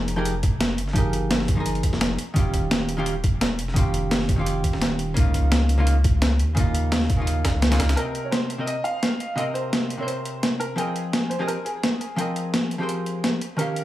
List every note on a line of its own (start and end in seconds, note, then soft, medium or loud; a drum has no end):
0.00 0.79 F1 loud
0.00 0.14 F3 medium
0.00 0.15 D#4 medium
0.00 0.16 G#4 medium
0.00 0.16 A#4 medium
0.08 closed hi-hat medium
0.16 0.33 F3 medium
0.16 0.33 D#4 medium
0.16 0.34 G4 medium
0.16 0.34 G#4 medium
0.16 0.34 A#4 medium
0.25 closed hi-hat medium
0.43 kick loud
0.43 closed hi-hat medium
0.61 snare loud
0.61 closed hi-hat medium
0.78 1.82 G1 medium
0.78 closed hi-hat medium
0.88 snare soft
0.93 1.54 F3 medium
0.93 1.55 D#4 medium
0.93 1.56 G4 medium
0.93 1.56 G#4 medium
0.93 kick loud
0.93 closed hi-hat medium
0.98 1.57 A#4 loud
1.13 closed hi-hat medium
1.31 snare loud
1.31 closed hi-hat medium
1.40 snare medium
1.48 kick loud
1.48 closed hi-hat medium
1.55 2.16 F3 medium
1.55 2.17 D#4 medium
1.55 2.18 G#4 medium
1.60 2.19 A#4 medium
1.66 closed hi-hat medium
1.75 closed hi-hat soft
1.83 kick medium
1.83 closed hi-hat medium
1.93 2.17 F1 medium
1.93 snare soft
2.01 snare loud
2.01 closed hi-hat medium
2.19 closed hi-hat medium
2.34 3.60 D#1 medium
2.34 2.95 D#3 medium
2.34 2.96 C#4 medium
2.34 2.96 F4 medium
2.34 kick loud
2.34 closed hi-hat medium
2.39 2.97 G4 medium
2.54 kick medium
2.54 closed hi-hat medium
2.71 snare loud
2.71 closed hi-hat medium
2.89 closed hi-hat medium
2.97 3.14 D#3 medium
2.97 3.14 C#4 medium
2.97 3.14 F4 medium
2.97 3.15 G4 loud
3.06 closed hi-hat medium
3.24 kick loud
3.24 closed hi-hat medium
3.41 snare loud
3.41 closed hi-hat medium
3.59 4.63 F1 medium
3.59 closed hi-hat medium
3.68 snare soft
3.74 4.35 D#3 medium
3.74 4.36 C#4 medium
3.74 4.37 F4 medium
3.74 kick loud
3.74 closed hi-hat medium
3.79 4.37 G4 medium
3.94 closed hi-hat medium
4.11 snare loud
4.11 closed hi-hat medium
4.21 snare soft
4.29 kick loud
4.29 closed hi-hat medium
4.36 5.14 D#3 medium
4.36 5.14 C#4 medium
4.36 5.15 F4 medium
4.41 5.16 G4 medium
4.46 closed hi-hat medium
4.64 kick medium
4.64 closed hi-hat medium
4.73 5.15 D#1 medium
4.73 snare soft
4.82 snare loud
4.82 closed hi-hat medium
4.99 closed hi-hat medium
5.14 6.41 C#2 medium
5.14 5.75 C#3 medium
5.14 5.76 A#3 medium
5.14 5.77 D#4 medium
5.14 kick loud
5.14 closed hi-hat medium
5.19 5.78 F4 medium
5.34 kick medium
5.34 closed hi-hat medium
5.52 snare loud
5.52 closed hi-hat medium
5.69 closed hi-hat medium
5.78 5.94 C#3 medium
5.78 5.95 A#3 medium
5.78 5.95 D#4 medium
5.78 5.96 F4 medium
5.87 closed hi-hat medium
6.04 kick loud
6.04 closed hi-hat medium
6.22 snare loud
6.22 closed hi-hat medium
6.39 7.44 D#2 medium
6.39 closed hi-hat medium
6.55 7.15 C#3 medium
6.55 7.17 A#3 medium
6.55 7.17 D#4 medium
6.55 kick loud
6.55 closed hi-hat medium
6.60 7.18 F4 medium
6.74 closed hi-hat medium
6.92 snare loud
6.92 closed hi-hat medium
7.01 snare medium
7.10 kick loud
7.10 closed hi-hat medium
7.17 7.69 C#3 medium
7.17 7.70 A#3 medium
7.17 7.70 D#4 medium
7.21 7.71 F4 medium
7.27 closed hi-hat medium
7.45 kick medium
7.45 snare loud
7.45 closed hi-hat medium
7.54 7.79 C#2 medium
7.62 snare loud
7.62 closed hi-hat medium
7.71 7.95 C#3 medium
7.71 7.95 A#3 medium
7.71 7.96 D#4 medium
7.71 7.96 F4 medium
7.71 snare loud
7.71 closed hi-hat medium
7.71 closed hi-hat soft
7.80 7.96 C#2 medium
7.80 snare loud
7.80 closed hi-hat medium
7.89 snare loud
7.89 closed hi-hat medium
7.95 8.56 C3 medium
7.95 8.57 C4 medium
7.95 8.26 A#4 medium
7.95 8.58 A#4 medium
7.95 closed hi-hat medium
8.00 8.59 D#5 medium
8.15 closed hi-hat medium
8.25 8.32 C#5 medium
8.31 8.68 C5 medium
8.31 snare loud
8.31 closed hi-hat medium
8.50 closed hi-hat medium
8.58 8.75 C3 medium
8.58 8.75 C4 medium
8.58 8.76 A#4 medium
8.58 8.76 D#5 medium
8.66 8.85 D#5 loud
8.66 closed hi-hat medium
8.84 9.39 F5 loud
8.84 closed hi-hat medium
9.03 snare loud
9.03 closed hi-hat medium
9.20 closed hi-hat medium
9.36 9.96 C3 medium
9.36 9.97 C4 medium
9.36 9.98 A#4 medium
9.36 9.41 D#5 medium
9.36 closed hi-hat medium
9.40 9.99 D#5 medium
9.54 10.02 C5 medium
9.54 closed hi-hat medium
9.73 snare loud
9.73 closed hi-hat medium
9.90 closed hi-hat medium
9.97 10.75 C3 medium
9.97 10.75 C4 medium
9.97 10.77 A#4 medium
9.97 10.07 C#5 medium
10.02 10.77 C5 medium
10.07 10.62 C5 medium
10.07 closed hi-hat medium
10.25 closed hi-hat medium
10.43 snare loud
10.43 closed hi-hat medium
10.60 10.78 A#4 medium
10.60 closed hi-hat medium
10.76 11.37 F3 medium
10.76 11.37 C4 medium
10.76 11.32 G#4 medium
10.76 11.39 A#4 medium
10.76 11.38 G5 medium
10.76 closed hi-hat medium
10.81 11.39 D#5 medium
10.96 closed hi-hat medium
11.13 snare loud
11.13 closed hi-hat medium
11.30 11.48 C5 medium
11.30 closed hi-hat medium
11.39 11.56 F3 medium
11.39 11.56 C4 medium
11.39 11.56 G4 medium
11.39 11.57 G#4 medium
11.39 11.57 A#4 medium
11.39 11.57 D#5 medium
11.47 11.66 A#4 medium
11.47 closed hi-hat medium
11.65 12.67 G#4 medium
11.65 closed hi-hat medium
11.83 snare loud
11.83 closed hi-hat medium
12.01 closed hi-hat medium
12.16 12.77 F3 medium
12.16 12.78 C4 medium
12.16 12.79 A#4 medium
12.16 12.78 G5 medium
12.16 closed hi-hat medium
12.21 12.80 D#5 medium
12.36 closed hi-hat medium
12.54 snare loud
12.54 closed hi-hat medium
12.71 closed hi-hat medium
12.78 13.39 F3 medium
12.78 13.40 C4 medium
12.78 13.40 G4 medium
12.78 13.41 G#4 medium
12.78 13.41 A#4 medium
12.83 13.42 C5 medium
12.89 closed hi-hat medium
13.06 closed hi-hat medium
13.24 snare loud
13.24 closed hi-hat medium
13.41 closed hi-hat medium
13.57 13.84 D#3 medium
13.57 13.84 C#4 medium
13.57 13.84 G4 medium
13.57 13.84 A#4 medium
13.57 closed hi-hat medium
13.61 13.84 F5 medium
13.76 closed hi-hat medium